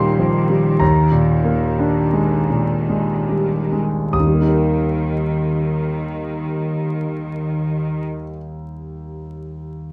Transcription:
Already playing: grand piano D#2 A#2 G3 A#3 D#4 G5 C6 D6, cello section D#3
0.19 grand piano F3
0.49 grand piano G3
0.79 grand piano D#2 A#5
1.11 grand piano A#2
1.44 grand piano A#3
1.79 grand piano D4
2.13 grand piano G#3
2.50 grand piano A#2
2.90 grand piano G#3
3.29 grand piano G3
3.72 grand piano G#3
4.13 grand piano D#2 D#6, cello section D#3
4.20 grand piano D#3
4.27 grand piano G3
4.34 grand piano A#3
4.41 grand piano D#4
4.48 grand piano A#4

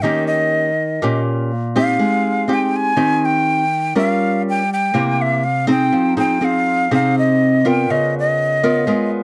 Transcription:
0.02 nylon-string guitar D#3 A#3 C#4 G4, flute D#5
0.27 flute D#5
1.02 nylon-string guitar A#2 A#3 C#4 G4
1.75 nylon-string guitar C4 D#4 G4, flute F5
1.99 nylon-string guitar G#3
2.48 nylon-string guitar C4 D#4 G4
2.53 flute G5
2.76 flute G#5
2.96 nylon-string guitar D#3 C4 D#4 G4
3.25 flute G5
3.95 nylon-string guitar G3 C#4 F4 A#4, flute F5
4.50 flute G5
4.73 flute G5
4.94 nylon-string guitar C3 A#3 E4 G4
5.22 flute E5
5.44 flute F5
5.67 nylon-string guitar C4 D#4 G#4, flute G5
5.92 nylon-string guitar F3, tine electric piano F5
6.09 tine electric piano A#5
6.17 nylon-string guitar C4 D#4 G#4, flute G5
6.27 tine electric piano C6
6.41 nylon-string guitar C4 D#4 G#4, flute F5
6.91 nylon-string guitar C3 C4 D#4 G#4, flute F5
7.19 flute D#5
7.64 nylon-string guitar B3 F4 A#4, tine electric piano D5, flute G5
7.90 nylon-string guitar C#3, flute D#5
8.19 flute D#5
8.63 nylon-string guitar B3 F4 A#4, tine electric piano C#5
8.79 tine electric piano F5
8.87 nylon-string guitar G#3 B3 F4 A#4

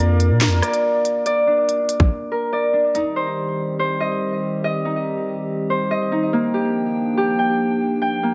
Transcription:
Already playing: 808-style bass F2, grand piano A#3 A#4 D5 F5, harp D4 F4 G#4 A#4 F5
0.20 closed hi-hat
0.31 808-style bass A#2
0.41 harp A#4, snare, clap, closed hi-hat
0.47 808-style bass F2
0.62 harp D5, cross-stick, closed hi-hat
0.73 closed hi-hat
1.05 closed hi-hat
1.26 harp D5, closed hi-hat
1.47 harp D4
1.69 closed hi-hat
1.89 closed hi-hat
2.00 808-style bass A#1, kick
2.32 harp A#4
2.53 harp D5
2.73 harp D4
2.95 ambient pad D#3 G3 C4 G4, harp D#4, closed hi-hat
3.16 harp C5
3.79 harp C5
4.00 harp D#5
4.64 harp D#5
4.85 harp D#4
5.70 harp C5
5.91 harp D#5
6.12 harp D#4
6.33 ambient pad F3 A#3 D4 G5, harp A#3
6.54 harp G4
7.17 harp G4
7.39 harp G5
8.02 harp G5
8.23 harp A#3

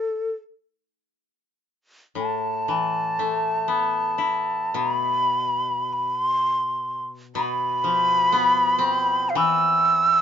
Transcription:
Already playing: shakuhachi A4
2.15 koto A2, shakuhachi A5
2.68 koto E3
3.19 koto A3
3.68 koto B3
4.18 koto E4
4.74 koto B2, shakuhachi A#5
4.94 shakuhachi B5
5.93 shakuhachi B5
6.20 shakuhachi C6
7.35 koto B2, shakuhachi B5
7.84 koto F3
8.32 koto B3
8.79 koto C4
9.29 shakuhachi F5
9.35 koto E3, shakuhachi E6

